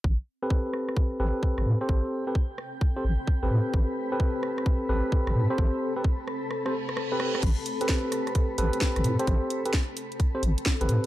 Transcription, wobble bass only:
X:1
M:4/4
L:1/16
Q:"Swing 16ths" 1/4=130
K:Am
V:1 name="Wobble bass" clef=bass
A,,, z8 z A,,, z2 A,,, A,, z | A,,, z8 z A,,, z2 A,,, A,, z | A,,, z8 z A,,, z2 A,,, A,, z | A,,, z12 z3 |
A,,, z8 z A,,, z2 A,,, A,, z | A,,, z8 z A,,, z2 A,,, A,, z |]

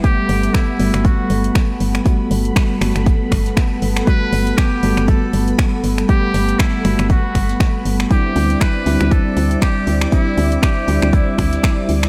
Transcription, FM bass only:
X:1
M:4/4
L:1/16
Q:"Swing 16ths" 1/4=119
K:G
V:1 name="FM bass" clef=bass
z2 G,,,2 z2 G,,, G,,,2 z G,,,2 z2 G,,,2 | z2 G,,,2 z2 G,,, G,,,2 z G,,,2 z2 G,,,2 | z2 G,,,2 z2 G,,, G,,,2 z G,,,2 z2 G,,,2 | z2 G,,,2 z2 G,,, G,,,2 z G,,,2 z2 G,,,2 |
z2 D,,2 z2 D,, D,,2 z D,,2 z2 D,,2 | z2 D,,2 z2 D,, D,,2 z D,,2 z2 D,,2 |]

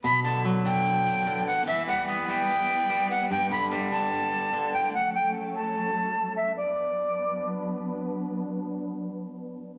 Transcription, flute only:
X:1
M:4/4
L:1/8
Q:1/4=147
K:Bm
V:1 name="Flute"
b a z g4 f | e f z g4 f | g b z a4 g | f g z a4 e |
d6 z2 | z8 |]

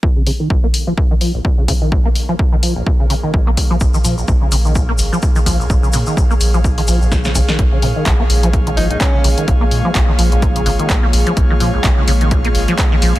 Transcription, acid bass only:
X:1
M:4/4
L:1/16
Q:"Swing 16ths" 1/4=127
K:Bbm
V:1 name="Acid bass" clef=bass
B,, D, D, E, B,,, B, z F, z E, F, B,,, B,, D, D, E, | B,,, B, z F, z E, F, B,,, B,, D, D, E, B,,, B, z F, | z E, F, B,,, B,, D, D, E, B,,, B, z F, z E, F, B,,, | B,, D, D, E, B,,, B, z F, z E, F, B,,, B,, D, D, E, |
B,, D, D, E, B,,, B, z F, z E, F, B,,, B,, D, D, E, | B,,, B, z F, z E, F, B,,, B,, D, D, E, B,,, B, z F, | z E, F, B,,, B,, D, D, E, B,,, B, z F, z E, F, B,,, |]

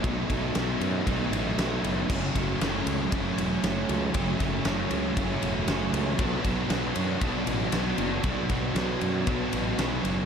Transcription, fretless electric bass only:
X:1
M:4/4
L:1/8
Q:1/4=117
K:Bdor
V:1 name="Fretless electric bass" clef=bass
B,,, B,,, B,,, F,, B,,, A,,, B,,, F,,, | F,,, F,,, F,,, C,, F,,, E,,, F,,, C,, | F,,, F,,, F,,, C,, F,,, E,,, F,,, C,, | B,,, B,,, B,,, F,, B,,, A,,, B,,, F,,, |
B,,, B,,, B,,, F,, B,,, A,,, B,,, F,,, |]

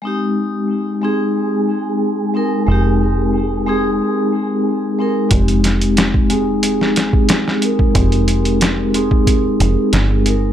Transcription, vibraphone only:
X:1
M:4/4
L:1/8
Q:1/4=91
K:Fm
V:1 name="Vibraphone"
[A,CEG]3 [A,CEA] z3 [A,CEB] | [A,CEG]3 [A,CEA] z3 [A,CEB] | [A,CG]3 [A,CEA] z3 [A,CEB] | [A,CEG]3 [A,CEA] z3 [A,CEB] |]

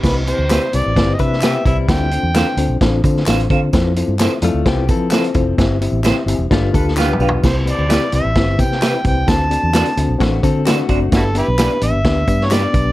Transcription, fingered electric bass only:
X:1
M:4/4
L:1/16
Q:1/4=130
K:C
V:1 name="Fingered electric bass" clef=bass
C,,3 D,,2 z C,, A,,, G,,,2 C,4 C,,2 | D,,3 E,,2 z D,, B,,, A,,,2 D,2 A,,,2 D,2 | F,,3 G,,2 z F,, D,, C,,2 F,4 F,,,2 | G,,,3 A,,,2 z G,,, E,,, G,,,2 D,,4 B,,,2 |
C,,3 D,,2 z C,, A,,, G,,,2 C,4 C,,2 | D,,3 E,,2 z D,, B,,, A,,,2 D,4 ^F,,,2 | G,,,3 B,,,2 z A,,, G,,, D,,2 G,,4 B,,,2 |]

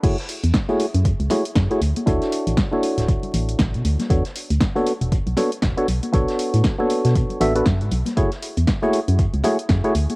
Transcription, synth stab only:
X:1
M:4/4
L:1/16
Q:"Swing 16ths" 1/4=118
K:F#m
V:1 name="Synth stab"
[A,EFGc] z4 [A,EFGc] z4 [A,EFGc] z2 [A,EFGc] z2 | [DEFAc]4- [DEFAc] [DEFAc]8- [DEFAc]3 | [B,DFAc] z4 [B,DFAc] z4 [B,DFAc] z2 [B,DFAc] z2 | [B,DFAc]4- [B,DFAc] [B,DFAc]4- [B,DFAc] [B,DFAe] [B,DFAB] z4 |
[A,EFGc] z4 [A,EFGc] z4 [A,EFGc] z2 [A,EFGc] z2 |]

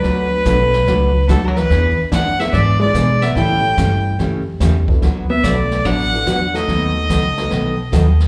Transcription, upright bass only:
X:1
M:4/4
L:1/8
Q:"Swing" 1/4=144
K:Bm
V:1 name="Upright bass" clef=bass
D,,2 B,,,2 C,,2 D,,2 | E,, z F,,2 ^G,,2 B,,2 | A,,2 G,,2 F,,2 E,,2 | D,,2 B,,,2 A,,,2 E,,2 |
^D,,2 C,,2 B,,,2 D,,2 |]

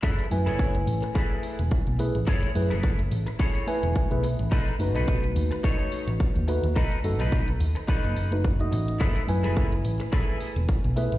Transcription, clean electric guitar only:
X:1
M:4/4
L:1/16
Q:"Swing 16ths" 1/4=107
K:F#dor
V:1 name="Clean electric guitar"
[EGAB]2 z [EGAc]2 z3 [EGAB]3 z4 z | [EGAc]2 z [EGAB]2 z3 [EGAc]3 z4 z | [DAB]2 z [DAB]2 z3 [DAc]3 z4 z | [DAB]2 z [DAB]2 z3 [DAB]3 z4 z |
[EGAB]2 z [EGAB]2 z3 [EGAB]3 z4 z |]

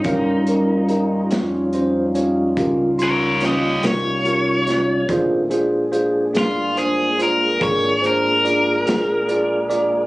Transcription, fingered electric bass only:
X:1
M:12/8
L:1/8
Q:3/8=48
K:Eb
V:1 name="Fingered electric bass" clef=bass
G,,3 F,,3 _D,,3 C,,3 | z3 G,,,3 A,,,3 B,,,3 |]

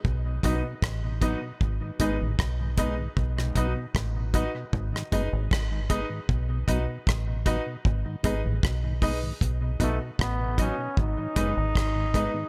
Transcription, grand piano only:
X:1
M:4/4
L:1/8
Q:1/4=77
K:G#phr
V:1 name="Grand piano"
z [DFBd] z [DFBd] z [DGBd] z [DGBd] | z [DFBd] z [DFBd] z [DGBd] z [DGBd] | z [DFBd] z [DFBd] z [DGBd] z [DGBd] | z [DFBd] z [DFBd] z [DGBd] z [DGBd] |]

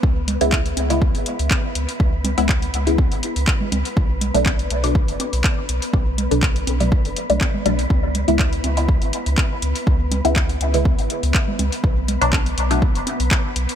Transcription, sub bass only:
X:1
M:4/4
L:1/16
Q:"Swing 16ths" 1/4=122
K:C#phr
V:1 name="Sub bass" clef=bass
C,,3 C,,3 C,,3 G,,, z C,, z2 C,, z | C,,3 C,,3 C,,3 G,,, z C,, z2 C,, z | B,,,3 B,,,3 B,,,3 F,,, z B,,, z2 B,,, z | B,,,3 B,,,3 B,,,3 F,,, z B,,, z2 B,,,2 |
C,,3 C,,3 C,,3 G,,, z C,, z2 C,, z | C,,3 C,,3 C,,3 G,,, z C,, z2 C,, z | B,,,3 B,,,3 B,,,3 F,,, z B,,, z2 B,,, z |]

